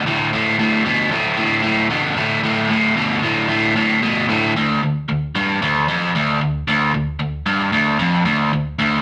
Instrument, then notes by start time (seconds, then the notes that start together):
overdriven electric guitar
0.06 D2 A2
0.33 D2 A2
0.59 D2 A2
0.84 D2 B2
1.11 D2 A2
1.37 D2 A2
1.63 D2 A2
1.90 D2 B2
2.16 D2 A2
2.43 D2 A2
2.69 D2 A2
2.96 D2 B2
3.22 D2 A2
3.48 D2 A2
3.76 D2 A2
4.03 D2 B2
4.29 D2 A2
4.56 D2
4.83 D2
5.09 D2
5.35 G2
5.62 D2
5.88 F2
6.15 D2
6.41 D2
6.68 D2
6.94 D2
7.19 D2
7.46 G2
7.72 D2
7.99 F2
8.25 D2
8.53 D2
8.79 D2